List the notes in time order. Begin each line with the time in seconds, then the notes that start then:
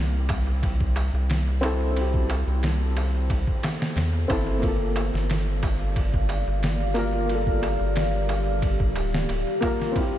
Already playing: C2 C4 E4 G4
0.29 kick, ride, darbuka tek
0.47 darbuka tek
0.63 kick, ride, darbuka tek
0.81 kick, darbuka tek
0.96 ride, darbuka tek
1.14 C2, darbuka tek
1.30 snare, ride, darbuka tek
1.47 darbuka tek
1.61 C4 E4, ride, darbuka tek
1.65 A4
1.81 darbuka tek
1.92 C4
1.97 E4, ride, darbuka tek
2.01 G4
2.14 kick
2.30 ride, darbuka tek
2.47 C2, darbuka tek
2.63 snare, ride, darbuka tek
2.97 ride, darbuka tek
3.15 darbuka tek
3.30 C2, kick, ride, darbuka tek
3.47 kick, darbuka tek
3.63 snare, ride, darbuka tek
3.80 snare, darbuka tek
3.96 E2, snare, ride, darbuka tek
4.13 darbuka tek
4.28 G1 C4 E4, kick, ride, darbuka tek
4.33 A4
4.47 darbuka tek
4.59 A#3, darbuka tek
4.63 F4 G4 D5 F5, kick, ride
4.68 A4
4.96 ride, darbuka tek
5.14 G1, snare, darbuka tek
5.30 snare, ride, darbuka tek
5.63 kick, ride, darbuka tek
5.80 darbuka tek
5.96 kick, ride, darbuka tek
6.14 kick, darbuka tek
6.29 ride, darbuka tek
6.47 G1, darbuka tek
6.63 snare, ride, darbuka tek
6.80 darbuka tek
6.94 A#3 F4, ride, darbuka tek
6.99 A#4
7.13 darbuka tek
7.25 A#3
7.29 F4, ride, darbuka tek
7.35 A4
7.47 kick
7.63 ride, darbuka tek
7.79 G1, darbuka tek
7.96 snare, ride, darbuka tek
8.29 ride, darbuka tek
8.46 darbuka tek
8.62 kick, ride, darbuka tek
8.80 kick, darbuka tek
8.96 D1, ride, darbuka tek
9.14 snare, darbuka tek
9.29 D1, ride, darbuka tek
9.47 darbuka tek
9.61 A#3 F4, kick, ride, darbuka tek
9.65 A#4
9.80 snare, darbuka tek
9.92 C4 C5 E5
9.96 E4 C6, kick, ride, darbuka tek
10.01 G4